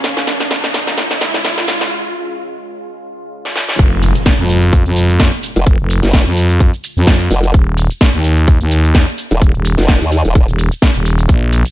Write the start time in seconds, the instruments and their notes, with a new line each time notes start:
Already playing: string section A#3 D#4 G#4 C#5 F5, riser
0.04 ambient pad C#3 G#3 F4, snare, closed hi-hat, shaker
0.17 snare
0.27 snare, open hi-hat, shaker
0.40 snare, closed hi-hat, shaker
0.51 snare, closed hi-hat, shaker
0.64 snare
0.74 snare, open hi-hat, shaker
0.87 snare, closed hi-hat, shaker
0.98 snare, closed hi-hat, shaker
1.11 snare, closed hi-hat
1.21 snare, open hi-hat, shaker
1.34 snare, shaker
1.45 snare, closed hi-hat, shaker
1.58 snare, closed hi-hat, shaker
1.68 snare, open hi-hat, shaker
1.81 snare, closed hi-hat, shaker
3.45 snare
3.56 snare
3.69 snare
3.79 fm bass F1, kick, closed hi-hat, crash, impact, shaker
4.02 open hi-hat, shaker
4.15 closed hi-hat, shaker
4.26 kick, snare, closed hi-hat, shaker
4.39 fm bass F2, shaker
4.49 open hi-hat, shaker
4.62 closed hi-hat, shaker
4.73 kick, closed hi-hat, shaker
4.86 fm bass F2, closed hi-hat, shaker
4.96 open hi-hat, shaker
5.09 shaker
5.20 kick, snare, closed hi-hat, shaker
5.33 closed hi-hat
5.43 open hi-hat, shaker
5.56 wobble bass F1, closed hi-hat, shaker
5.67 fm bass F1, kick, closed hi-hat, shaker
5.80 fm bass F1
5.90 open hi-hat, shaker
6.03 wobble bass F#1, snare, closed hi-hat, shaker
6.13 kick, snare, closed hi-hat, shaker
6.27 fm bass F2, shaker
6.37 open hi-hat, shaker
6.50 closed hi-hat, shaker
6.60 kick, closed hi-hat, shaker
6.73 closed hi-hat, shaker
6.84 open hi-hat, shaker
6.97 fm bass F2, shaker
7.07 kick, snare, closed hi-hat, shaker
7.20 closed hi-hat
7.31 wobble bass F1, open hi-hat, shaker
7.44 closed hi-hat, shaker
7.54 fm bass D#1, kick, closed hi-hat, shaker
7.77 open hi-hat, shaker
7.91 closed hi-hat, shaker
8.01 kick, snare, closed hi-hat, shaker
8.14 fm bass D#2, shaker
8.24 open hi-hat, shaker
8.37 closed hi-hat, shaker
8.48 kick, closed hi-hat, shaker
8.61 fm bass D#2, closed hi-hat, shaker
8.71 open hi-hat, shaker
8.84 shaker
8.95 kick, snare, closed hi-hat, shaker
9.08 closed hi-hat
9.18 open hi-hat, shaker
9.31 wobble bass D#1, closed hi-hat, shaker
9.41 fm bass D#1, kick, closed hi-hat, shaker
9.55 fm bass D#1, closed hi-hat
9.65 open hi-hat, shaker
9.78 wobble bass F1, snare, closed hi-hat, shaker
9.88 kick, snare, closed hi-hat, shaker
10.01 wobble bass D#2, closed hi-hat, shaker
10.12 open hi-hat, shaker
10.25 wobble bass D#1, closed hi-hat, shaker
10.35 kick, closed hi-hat, shaker
10.48 fm bass D#1, closed hi-hat, shaker
10.59 open hi-hat, shaker
10.72 closed hi-hat, shaker
10.82 kick, snare, closed hi-hat, shaker
10.95 fm bass D#1, closed hi-hat, shaker
11.06 open hi-hat, shaker
11.19 closed hi-hat, shaker
11.29 fm bass A#1, kick, closed hi-hat, shaker
11.53 open hi-hat, shaker
11.66 closed hi-hat, shaker